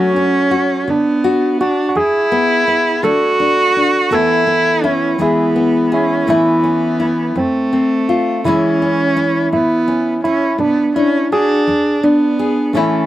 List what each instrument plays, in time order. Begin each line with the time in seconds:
Already playing: nylon-string guitar C#3 F#3 A3 C#4 F#4, cello C#4, tine electric piano F#4
0.16 nylon-string guitar C#4
0.51 nylon-string guitar F#4
0.88 nylon-string guitar D3, cello B3, tine electric piano D4
1.24 nylon-string guitar F#4
1.61 cello D4, nylon-string guitar F#4, tine electric piano F#4
1.89 cello D4, tine electric piano F#4
1.96 nylon-string guitar E2, cello E4, tine electric piano G#4
2.32 nylon-string guitar B3
2.68 nylon-string guitar B3
3.03 nylon-string guitar D3 A3 D4, cello F#4, tine electric piano A4
3.40 nylon-string guitar D4
3.77 nylon-string guitar D4
4.11 nylon-string guitar E2 E3 A3 B3, cello E4, tine electric piano A4
4.47 nylon-string guitar B3
4.84 cello C#4, nylon-string guitar E4, tine electric piano E4
5.18 nylon-string guitar E2 E3 G#3 B3 G#4, cello B3, tine electric piano E4
5.56 nylon-string guitar B3
5.92 cello C#4, tine electric piano E4, nylon-string guitar G#4
6.27 nylon-string guitar A2 E3 A3 C#4 E4, cello B3, tine electric piano E4
6.64 nylon-string guitar C#4
7.00 nylon-string guitar E4
7.36 nylon-string guitar F2, cello A3, tine electric piano C4
7.73 nylon-string guitar C4
8.09 nylon-string guitar F4
8.44 nylon-string guitar C#3 E3 G#3 C#4 E4, cello C#4, tine electric piano E4
8.82 nylon-string guitar C#4
9.17 nylon-string guitar E4
9.53 nylon-string guitar A2, cello B3, tine electric piano E4
9.88 nylon-string guitar C#4
10.24 cello C#4, tine electric piano E4, nylon-string guitar E4
10.58 nylon-string guitar B2, cello B3, tine electric piano D4
10.96 cello C#4, nylon-string guitar D4, tine electric piano E4
11.32 cello D4, nylon-string guitar F#4, tine electric piano G#4
11.67 nylon-string guitar E2
12.03 cello B3, nylon-string guitar D4, tine electric piano D4
12.39 nylon-string guitar G#4
12.73 nylon-string guitar A2 E3 A3 C#4 E4, cello A3, tine electric piano C#4